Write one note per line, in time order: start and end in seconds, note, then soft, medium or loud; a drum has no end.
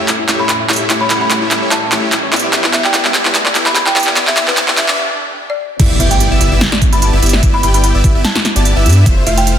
0.00 2.30 A2 medium
0.00 2.30 G3 medium
0.00 0.11 A3 medium
0.00 2.30 C#4 medium
0.00 0.11 E4 medium
0.00 0.11 G4 medium
0.00 0.11 C#5 medium
0.00 0.11 E5 loud
0.00 riser medium
0.08 0.11 E4 medium
0.08 clap medium
0.08 closed hi-hat medium
0.19 0.24 E4 medium
0.29 0.49 A3 medium
0.29 0.34 E4 medium
0.29 0.49 E4 medium
0.29 0.49 G4 medium
0.29 0.49 C#5 medium
0.29 0.49 E5 loud
0.29 clap medium
0.29 closed hi-hat medium
0.40 0.44 C#5 loud
0.40 0.46 B5 medium
0.49 0.57 E4 medium
0.49 0.56 B5 medium
0.49 clap medium
0.49 closed hi-hat medium
0.60 0.63 E5 medium
0.69 0.88 A3 medium
0.69 0.88 E4 medium
0.69 0.73 E4 medium
0.69 0.88 G4 medium
0.69 0.88 C#5 medium
0.69 0.88 E5 medium
0.69 clap medium
0.69 closed hi-hat soft
0.73 closed hi-hat medium
0.76 closed hi-hat medium
0.80 0.85 E4 medium
0.90 1.08 A3 medium
0.90 0.95 E4 medium
0.90 1.08 E4 medium
0.90 1.08 G4 medium
0.90 1.08 C#5 medium
0.90 1.08 E5 medium
0.90 clap medium
0.90 closed hi-hat medium
1.01 1.05 C#5 loud
1.01 1.08 B5 medium
1.10 1.39 A3 medium
1.10 1.18 E4 medium
1.10 1.39 E4 medium
1.10 1.39 G4 medium
1.10 1.39 C#5 medium
1.10 1.39 F#5 medium
1.10 1.19 B5 medium
1.10 clap medium
1.10 closed hi-hat medium
1.21 1.24 E5 medium
1.21 1.27 B5 medium
1.31 1.34 E4 medium
1.31 clap medium
1.31 closed hi-hat medium
1.41 1.49 A3 medium
1.41 1.46 E4 medium
1.41 1.49 E4 medium
1.41 1.49 G4 medium
1.41 1.49 C#5 medium
1.41 1.49 E5 medium
1.51 1.59 A3 medium
1.51 1.56 E4 medium
1.51 1.59 E4 medium
1.51 1.59 G4 medium
1.51 1.59 C#5 medium
1.51 1.59 E5 loud
1.51 clap medium
1.51 closed hi-hat medium
1.62 1.74 A3 medium
1.62 1.74 E4 medium
1.62 1.74 G4 medium
1.62 1.67 C#5 loud
1.62 1.74 C#5 medium
1.62 1.74 E5 loud
1.71 1.80 E4 medium
1.71 2.03 A5 medium
1.71 clap medium
1.71 closed hi-hat medium
1.82 1.85 E5 medium
1.92 2.12 A3 medium
1.92 1.95 E4 medium
1.92 2.12 E4 medium
1.92 2.12 G4 medium
1.92 2.12 C#5 medium
1.92 2.12 E5 medium
1.92 clap medium
1.92 closed hi-hat medium
2.03 2.08 E4 medium
2.12 2.18 E4 medium
2.12 clap medium
2.12 closed hi-hat medium
2.23 2.28 C#5 loud
2.33 4.95 E2 medium
2.33 4.95 D3 medium
2.33 2.51 B3 medium
2.33 2.41 E4 medium
2.33 2.51 E4 medium
2.33 2.51 G4 medium
2.33 4.95 G4 medium
2.33 2.51 D5 medium
2.33 2.51 E5 medium
2.33 clap medium
2.33 closed hi-hat soft
2.36 closed hi-hat medium
2.39 closed hi-hat medium
2.44 2.46 E5 medium
2.53 2.71 B3 medium
2.53 2.56 E4 medium
2.53 2.71 E4 medium
2.53 2.71 G4 medium
2.53 2.71 D5 medium
2.53 2.71 E5 medium
2.53 clap medium
2.53 closed hi-hat medium
2.64 2.69 E4 medium
2.64 clap medium
2.73 3.02 B3 medium
2.73 2.79 E4 medium
2.73 3.02 E4 medium
2.73 3.02 G4 medium
2.73 3.02 D5 medium
2.73 2.82 E5 medium
2.73 3.02 F#5 medium
2.73 clap medium
2.73 closed hi-hat medium
2.84 2.89 D5 loud
2.84 3.01 G5 medium
2.84 clap medium
2.94 3.02 E4 medium
2.94 clap medium
2.94 closed hi-hat medium
3.05 3.12 B3 medium
3.05 3.12 E4 medium
3.05 3.12 G4 medium
3.05 3.12 D5 medium
3.05 3.08 E5 medium
3.05 3.12 E5 medium
3.05 clap medium
3.14 3.23 B3 medium
3.14 3.18 E4 medium
3.14 3.23 E4 medium
3.14 3.23 G4 medium
3.14 3.23 D5 medium
3.14 3.23 E5 loud
3.14 clap loud
3.14 closed hi-hat medium
3.25 3.37 B3 medium
3.25 3.30 E4 medium
3.25 3.37 E4 medium
3.25 3.37 G4 medium
3.25 3.37 D5 medium
3.25 3.37 E5 loud
3.25 clap medium
3.35 3.40 E4 medium
3.35 clap loud
3.35 closed hi-hat medium
3.46 3.50 D5 loud
3.46 clap medium
3.55 3.75 B3 medium
3.55 3.63 E4 medium
3.55 3.75 E4 medium
3.55 3.75 G4 medium
3.55 3.75 D5 medium
3.55 3.75 E5 medium
3.55 clap medium
3.55 closed hi-hat medium
3.66 3.69 E5 medium
3.66 3.72 B5 medium
3.66 clap medium
3.75 3.79 E4 medium
3.75 3.83 B5 medium
3.75 clap loud
3.75 closed hi-hat medium
3.86 3.91 E4 medium
3.86 3.92 G5 medium
3.86 clap medium
3.96 4.14 B3 medium
3.96 4.14 E4 medium
3.96 4.01 E4 medium
3.96 4.14 G4 medium
3.96 4.14 D5 medium
3.96 4.14 E5 medium
3.96 4.03 G5 medium
3.96 clap loud
3.96 closed hi-hat soft
4.00 closed hi-hat medium
4.03 closed hi-hat medium
4.07 4.12 D5 loud
4.07 clap medium
4.16 4.34 B3 medium
4.16 4.25 E4 medium
4.16 4.34 E4 medium
4.16 4.34 G4 medium
4.16 4.34 D5 medium
4.16 4.34 E5 medium
4.16 clap loud
4.16 closed hi-hat medium
4.27 4.33 E5 medium
4.27 4.30 E5 medium
4.27 clap medium
4.37 4.65 B3 medium
4.37 4.65 E4 medium
4.37 4.40 E4 medium
4.37 4.65 G4 medium
4.37 4.65 D5 medium
4.37 4.44 E5 medium
4.37 4.65 F#5 loud
4.37 clap loud
4.37 closed hi-hat medium
4.48 4.52 E4 medium
4.48 4.65 B4 medium
4.48 clap medium
4.57 4.63 E4 medium
4.57 clap loud
4.57 closed hi-hat medium
4.68 4.75 B3 medium
4.68 4.75 E4 medium
4.68 4.75 G4 medium
4.68 4.73 D5 loud
4.68 4.75 D5 medium
4.68 4.75 E5 medium
4.68 clap medium
4.77 4.86 B3 medium
4.77 4.86 E4 medium
4.77 4.86 G4 medium
4.77 4.86 D5 medium
4.77 4.95 E5 medium
4.77 4.86 E5 loud
4.77 clap loud
4.77 closed hi-hat medium
4.88 4.98 B3 medium
4.88 4.98 E4 medium
4.88 4.98 G4 medium
4.88 4.98 D5 medium
4.88 4.98 E5 medium
4.88 4.91 E5 medium
4.88 clap loud
5.50 5.80 D5 loud
5.80 5.98 G1 loud
5.80 5.98 B3 medium
5.80 5.83 E4 medium
5.80 5.98 E4 medium
5.80 5.98 G4 medium
5.80 5.98 D5 medium
5.80 5.98 E5 medium
5.80 kick loud
5.80 closed hi-hat medium
5.80 crash loud
5.80 impact medium
5.91 5.95 E4 medium
6.00 6.29 G1 loud
6.00 6.29 B3 medium
6.00 6.05 E4 medium
6.00 6.29 E4 medium
6.00 6.29 G4 medium
6.00 6.29 D5 medium
6.00 6.09 E5 medium
6.00 6.29 G5 medium
6.00 6.29 G5 loud
6.00 closed hi-hat medium
6.11 6.16 D5 loud
6.11 6.28 G5 medium
6.11 closed hi-hat medium
6.20 6.29 E4 medium
6.20 closed hi-hat medium
6.31 6.39 G1 loud
6.31 6.39 B3 medium
6.31 6.39 E4 medium
6.31 6.39 G4 medium
6.31 6.39 D5 medium
6.31 6.39 E5 medium
6.31 6.34 E5 medium
6.31 6.39 E5 medium
6.41 6.50 G1 loud
6.41 6.49 B3 medium
6.41 6.44 E4 medium
6.41 6.49 E4 medium
6.41 6.49 G4 medium
6.41 6.49 D5 medium
6.41 6.49 E5 loud
6.41 closed hi-hat medium
6.52 6.62 G1 loud
6.52 6.64 B3 medium
6.52 6.57 E4 medium
6.52 6.64 E4 medium
6.52 6.64 G4 medium
6.52 6.64 D5 medium
6.52 6.64 E5 loud
6.61 6.67 E4 medium
6.61 snare loud
6.61 closed hi-hat medium
6.72 6.77 D5 loud
6.72 snare medium
6.82 6.90 E4 medium
6.82 kick loud
6.82 closed hi-hat medium
6.92 7.11 G1 medium
6.92 7.10 B3 medium
6.92 7.10 E4 medium
6.92 7.10 G4 medium
6.92 7.10 D5 medium
6.92 6.95 E5 medium
6.92 7.10 A5 loud
6.92 6.99 B5 medium
6.92 closed hi-hat medium
7.02 7.05 E4 medium
7.02 7.09 B5 medium
7.02 closed hi-hat medium
7.13 7.21 G1 medium
7.13 7.20 B3 medium
7.13 7.20 E4 medium
7.13 7.18 E4 medium
7.13 7.20 G4 medium
7.13 7.20 D5 medium
7.13 7.20 E5 medium
7.13 7.20 E5 loud
7.22 7.41 G1 loud
7.22 7.41 B3 loud
7.22 7.28 E4 medium
7.22 7.41 E4 medium
7.22 7.41 G4 medium
7.22 7.41 D5 medium
7.22 7.41 E5 loud
7.22 closed hi-hat medium
7.26 closed hi-hat medium
7.29 closed hi-hat medium
7.33 7.38 D5 loud
7.33 snare medium
7.43 7.61 G1 loud
7.43 7.61 B3 medium
7.43 7.51 E4 medium
7.43 7.61 E4 medium
7.43 7.61 G4 medium
7.43 7.61 D5 medium
7.43 7.61 E5 medium
7.43 kick loud
7.43 closed hi-hat medium
7.54 7.57 E5 medium
7.54 7.61 B5 medium
7.63 7.92 G1 loud
7.63 7.92 B3 medium
7.63 7.67 E4 medium
7.63 7.92 E4 medium
7.63 7.92 G4 medium
7.63 7.92 D5 medium
7.63 7.92 G5 medium
7.63 7.72 B5 loud
7.63 closed hi-hat medium
7.74 7.79 E4 medium
7.74 7.80 B5 medium
7.74 closed hi-hat medium
7.84 7.89 E4 medium
7.84 7.91 B5 medium
7.84 closed hi-hat medium
7.95 8.02 G1 loud
7.95 8.02 B3 medium
7.95 8.02 E4 medium
7.95 8.02 G4 medium
7.95 7.99 D5 loud
7.95 8.02 D5 medium
7.95 8.02 E5 medium
8.04 8.13 G1 loud
8.04 8.12 B3 medium
8.04 8.12 E4 medium
8.04 8.12 G4 medium
8.04 8.12 D5 medium
8.04 8.12 E5 loud
8.04 kick loud
8.04 closed hi-hat medium
8.15 8.25 G1 loud
8.15 8.27 B3 medium
8.15 8.27 E4 medium
8.15 8.27 G4 medium
8.15 8.27 D5 medium
8.15 8.27 E5 loud
8.15 8.18 E5 medium
8.25 8.28 E4 medium
8.25 8.56 A5 medium
8.25 snare loud
8.25 closed hi-hat medium
8.36 8.40 E4 medium
8.36 snare medium
8.45 8.50 E4 medium
8.45 snare medium
8.45 closed hi-hat medium
8.56 8.74 G1 loud
8.56 8.74 B3 medium
8.56 8.74 E4 medium
8.56 8.74 G4 medium
8.56 8.74 D5 medium
8.56 8.61 D5 loud
8.56 8.74 A5 loud
8.56 8.74 A5 medium
8.56 closed hi-hat medium
8.65 8.74 E4 medium
8.65 closed hi-hat medium
8.76 8.87 G1 loud
8.76 8.83 B3 medium
8.76 8.83 E4 medium
8.76 8.83 G4 medium
8.76 8.83 D5 medium
8.76 8.83 E5 loud
8.76 8.79 E5 medium
8.76 8.83 E5 loud
8.86 9.04 G2 loud
8.86 9.04 B3 loud
8.86 9.04 E4 medium
8.86 8.89 E4 medium
8.86 9.04 G4 medium
8.86 9.04 D5 medium
8.86 9.04 E5 loud
8.86 closed hi-hat soft
8.89 closed hi-hat medium
8.93 closed hi-hat medium
8.97 9.01 E4 medium
9.06 9.25 F1 medium
9.06 9.24 A3 medium
9.06 9.24 E4 medium
9.06 9.12 E4 medium
9.06 9.24 F4 medium
9.06 9.24 C5 medium
9.06 9.24 E5 medium
9.06 kick loud
9.06 closed hi-hat medium
9.17 9.22 C5 loud
9.26 9.56 F1 loud
9.26 9.55 A3 medium
9.26 9.55 E4 medium
9.26 9.35 E4 medium
9.26 9.55 F4 medium
9.26 9.55 C5 medium
9.26 9.35 E5 loud
9.26 9.55 F5 medium
9.26 closed hi-hat medium
9.38 9.40 E5 medium
9.38 9.54 G5 loud
9.38 closed hi-hat medium
9.47 9.50 E4 medium
9.47 closed hi-hat medium